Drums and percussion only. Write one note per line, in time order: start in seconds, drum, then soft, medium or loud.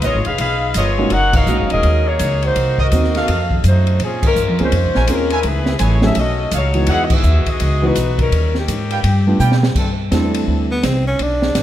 0.02 hi-hat pedal soft
0.02 ride medium
0.25 ride medium
0.38 ride medium
0.74 hi-hat pedal medium
0.74 ride medium
1.10 ride medium
1.33 kick medium
1.33 crash medium
1.46 hi-hat pedal soft
1.70 ride medium
1.83 ride medium
2.19 hi-hat pedal medium
2.19 ride medium
2.42 ride soft
2.56 ride medium
2.78 kick medium
2.92 hi-hat pedal medium
2.92 ride medium
3.04 snare soft
3.15 snare soft
3.15 ride soft
3.28 ride medium
3.51 kick medium
3.64 hi-hat pedal medium
3.64 ride medium
3.87 ride soft
4.00 ride medium
4.23 kick medium
4.23 crash medium
4.36 hi-hat pedal medium
4.59 ride soft
4.72 ride medium
4.95 snare soft
5.07 hi-hat pedal soft
5.07 ride medium
5.30 ride soft
5.43 ride medium
5.66 snare medium
5.79 hi-hat pedal soft
5.79 ride medium
6.02 snare medium
6.15 ride medium
6.51 hi-hat pedal medium
6.51 ride medium
6.74 ride soft
6.87 ride medium
7.10 kick loud
7.10 crash medium
7.23 hi-hat pedal soft
7.46 kick medium
7.46 ride soft
7.60 ride medium
7.95 hi-hat pedal medium
7.95 ride medium
8.18 kick medium
8.18 ride soft
8.32 ride medium
8.55 snare soft
8.68 hi-hat pedal medium
8.68 ride medium
8.91 ride soft
9.04 ride medium
9.40 hi-hat pedal medium
9.52 snare medium
9.63 snare medium
9.75 kick medium
9.75 crash medium
10.12 snare medium
10.12 hi-hat pedal soft
10.12 ride medium
10.34 ride medium
10.83 snare medium
10.83 hi-hat pedal medium
10.83 ride medium
11.19 ride medium
11.42 snare medium
11.55 snare medium
11.55 hi-hat pedal soft
11.55 ride medium